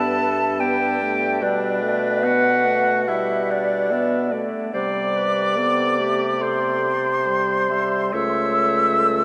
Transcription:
Already playing: G2 B3 A4 E5 A5
0.59 B3 G4 D5 G5
1.01 A3
1.42 B2 G3 D4 B4 D5
1.82 A3
2.23 B3 F#4 F#5
2.65 A3
3.08 G3 E4 G4 E5
3.51 D4 D5
3.91 B3 E5
4.32 A3 D5
4.73 C3 G3 C5 D5 D6
5.17 B4
5.58 B3 A4
5.99 A3 G4
6.41 A4 C5 C6
7.27 G3 C5
7.71 G3 E5
8.13 C#2 A3 C#5 E5 E6
8.99 A4

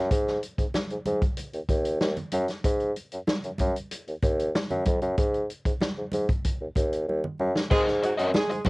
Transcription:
0.11 G#2, kick, closed hi-hat, muted conga
0.27 snare
0.43 closed hi-hat, muted conga
0.58 G#2, kick, closed hi-hat
0.74 snare, muted conga, high conga
0.90 G#2, closed hi-hat
1.05 G#2, closed hi-hat, muted conga, high conga, low conga
1.22 kick, closed hi-hat
1.37 closed hi-hat, muted conga
1.53 D#2, closed hi-hat
1.69 D#2, kick, closed hi-hat
1.85 closed hi-hat
2.01 D#2, snare, muted conga
2.16 closed hi-hat, low conga
2.32 F#2, closed hi-hat, muted conga, high conga
2.48 snare, closed hi-hat
2.64 G#2, kick, closed hi-hat
2.80 closed hi-hat
2.96 closed hi-hat, muted conga
3.12 F#2, closed hi-hat
3.27 snare, high conga
3.44 F#2, closed hi-hat
3.58 F#2, kick, closed hi-hat, muted conga, high conga, low conga
3.76 closed hi-hat
3.91 closed hi-hat, muted conga
4.08 D#2, closed hi-hat
4.22 D#2, kick, closed hi-hat, muted conga
4.39 closed hi-hat
4.55 snare
4.70 F#2, closed hi-hat, low conga
4.85 F2, kick, closed hi-hat, muted conga, high conga
5.02 F#2, closed hi-hat
5.18 G#2, kick, closed hi-hat, muted conga
5.34 closed hi-hat
5.50 closed hi-hat
5.65 G#2, kick, closed hi-hat
5.80 snare, high conga
5.98 G#2
6.12 G#2, closed hi-hat, muted conga, high conga, low conga
6.29 kick, closed hi-hat
6.44 kick, closed hi-hat
6.61 D#2
6.75 D#2, kick, closed hi-hat, muted conga
6.93 closed hi-hat
7.08 D#2, high conga
7.24 low conga
7.39 F#2, high conga
7.55 snare
7.70 G#2 G#3 C4 F#4 G#4 A#4 D#5, kick, crash, muted conga
7.87 snare
8.03 F#3 F#4, muted overdriven electric guitar stroke, closed hi-hat, muted conga
8.18 F#2 C4 F#4 A#4 D#5, closed hi-hat
8.34 G#3 G#4, snare, muted conga, high conga
8.50 G#2, muted overdriven electric guitar stroke, closed hi-hat
8.65 C4 F#4, closed hi-hat, muted conga, high conga, low conga

